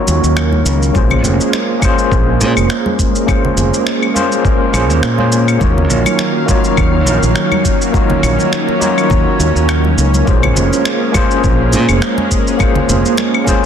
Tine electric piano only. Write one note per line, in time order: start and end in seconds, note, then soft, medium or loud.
0.00 0.93 A#3 medium
0.00 0.97 D#4 medium
0.00 0.95 F4 medium
0.00 0.97 F#4 medium
0.00 0.96 C#5 loud
0.93 1.78 A#3 medium
0.93 1.79 C#4 medium
0.93 1.79 F4 medium
0.93 1.80 G#4 medium
0.97 1.80 C5 medium
1.80 3.24 A#3 medium
1.80 3.24 C#4 medium
1.80 3.25 F4 medium
1.80 3.26 G#4 medium
1.85 3.26 C5 loud
3.26 4.11 A#3 medium
3.26 4.12 C#4 medium
3.26 4.13 F4 medium
3.26 4.13 G#4 medium
3.31 4.14 C5 medium
4.14 4.71 A#3 medium
4.14 4.71 C#4 medium
4.14 4.71 F4 medium
4.14 4.72 G#4 medium
4.14 4.72 C5 loud
4.73 5.15 A#3 medium
4.73 5.15 C#4 medium
4.73 5.15 F4 medium
4.73 5.16 G#4 medium
4.73 5.16 C5 medium
5.18 5.57 A#3 medium
5.18 5.58 C#4 medium
5.18 5.58 F4 medium
5.18 5.58 G#4 medium
5.18 5.59 C5 medium
5.59 6.44 A#3 medium
5.59 6.45 D#4 medium
5.59 6.46 F4 medium
5.59 6.46 F#4 medium
5.64 6.47 C#5 medium
6.46 7.90 A#3 medium
6.46 7.90 D#4 medium
6.46 7.91 F4 medium
6.46 7.91 F#4 medium
6.51 7.92 C#5 loud
7.92 8.77 A#3 medium
7.92 8.78 D#4 medium
7.92 8.79 F4 medium
7.92 8.79 F#4 medium
7.97 8.80 C#5 medium
8.79 10.23 A#3 medium
8.79 10.24 D#4 medium
8.79 10.24 F4 medium
8.79 10.25 F#4 medium
8.84 10.25 C#5 medium
10.25 11.10 A#3 medium
10.25 11.11 C#4 medium
10.25 11.12 F4 medium
10.25 11.12 G#4 medium
10.30 11.13 C5 medium
11.12 12.56 A#3 medium
11.12 12.56 C#4 medium
11.12 12.57 F4 medium
11.12 12.57 G#4 medium
11.16 12.58 C5 loud
12.58 13.43 A#3 medium
12.58 13.44 C#4 medium
12.58 13.44 F4 medium
12.58 13.45 G#4 medium
12.62 13.46 C5 medium
13.44 13.65 A#3 medium
13.44 13.65 C#4 medium
13.44 13.65 F4 medium
13.44 13.65 G#4 medium
13.49 13.65 C5 loud